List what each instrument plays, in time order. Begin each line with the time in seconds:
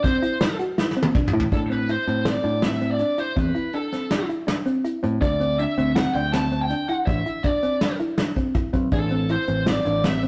0.03 synth arpeggio sound C4, lead electric guitar C5, kick, snare, closed hi-hat
0.23 synth arpeggio sound E4, closed hi-hat
0.41 synth arpeggio sound E4, snare, closed hi-hat
0.59 synth arpeggio sound F#4, closed hi-hat
0.78 synth arpeggio sound E4, snare
0.91 snare
0.97 synth arpeggio sound C4
1.02 high tom
1.15 synth arpeggio sound D4, kick, mid tom
1.28 mid tom
1.33 picked electric bass A2, synth arpeggio sound E4
1.40 floor tom
1.52 picked electric bass A2, synth arpeggio sound D4, lead electric guitar A4, kick, closed hi-hat
1.70 synth arpeggio sound C4, lead electric guitar B4, closed hi-hat
1.89 synth arpeggio sound E4, lead electric guitar C5, closed hi-hat
2.07 picked electric bass A2, synth arpeggio sound C4, closed hi-hat
2.25 synth arpeggio sound C4, lead electric guitar D5, snare, closed hi-hat
2.44 picked electric bass A2, synth arpeggio sound D4, closed hi-hat
2.62 synth arpeggio sound C4, lead electric guitar E5, snare, closed hi-hat
2.81 synth arpeggio sound C4, closed hi-hat
2.91 lead electric guitar D5
2.99 synth arpeggio sound D4, closed hi-hat
3.18 synth arpeggio sound E4, lead electric guitar C5, closed hi-hat
3.36 picked electric bass E2, synth arpeggio sound C4, lead electric guitar B4, kick, closed hi-hat
3.55 synth arpeggio sound E4, closed hi-hat
3.73 synth arpeggio sound D4, lead electric guitar A4, closed hi-hat
3.92 synth arpeggio sound C4, snare, closed hi-hat
4.11 synth arpeggio sound D4, snare, closed hi-hat
4.29 synth arpeggio sound E4, closed hi-hat
4.47 synth arpeggio sound D4, snare, closed hi-hat
4.66 synth arpeggio sound C4, closed hi-hat
4.85 synth arpeggio sound E4, closed hi-hat
5.03 picked electric bass A2, synth arpeggio sound C4, closed hi-hat
5.21 picked electric bass D2, synth arpeggio sound D4, lead electric guitar D5, kick, closed hi-hat
5.40 synth arpeggio sound C4, closed hi-hat
5.59 synth arpeggio sound D4, lead electric guitar E5, closed hi-hat
5.78 picked electric bass D2, synth arpeggio sound C4, closed hi-hat
5.95 synth arpeggio sound C4, lead electric guitar F#5, snare, closed hi-hat
6.14 picked electric bass D2, synth arpeggio sound D4, lead electric guitar G5, closed hi-hat
6.32 synth arpeggio sound C4, lead electric guitar A5, snare, closed hi-hat
6.52 synth arpeggio sound C4, closed hi-hat
6.62 lead electric guitar G5
6.70 synth arpeggio sound D4, closed hi-hat
6.89 synth arpeggio sound E4, lead electric guitar F#5, closed hi-hat
7.06 picked electric bass A1, synth arpeggio sound D4, lead electric guitar E5, kick, closed hi-hat
7.26 synth arpeggio sound E4, closed hi-hat
7.43 synth arpeggio sound D4, lead electric guitar D5, kick, closed hi-hat
7.63 synth arpeggio sound C4, closed hi-hat
7.81 synth arpeggio sound D4, snare, closed hi-hat
8.00 synth arpeggio sound E4, closed hi-hat
8.18 synth arpeggio sound D4, snare, closed hi-hat
8.36 synth arpeggio sound C4, kick, closed hi-hat
8.55 synth arpeggio sound E4, kick, closed hi-hat
8.73 picked electric bass B1, synth arpeggio sound C4, kick, closed hi-hat
8.91 picked electric bass A1, synth arpeggio sound D4, lead electric guitar A4, kick, closed hi-hat
9.10 synth arpeggio sound C4, closed hi-hat
9.29 synth arpeggio sound E4, lead electric guitar C5, closed hi-hat
9.47 picked electric bass A1, synth arpeggio sound C4, closed hi-hat
9.66 synth arpeggio sound C4, lead electric guitar D5, snare, closed hi-hat
9.85 picked electric bass A1, synth arpeggio sound D4, closed hi-hat
10.04 synth arpeggio sound C4, lead electric guitar E5, snare, closed hi-hat
10.23 synth arpeggio sound C4, closed hi-hat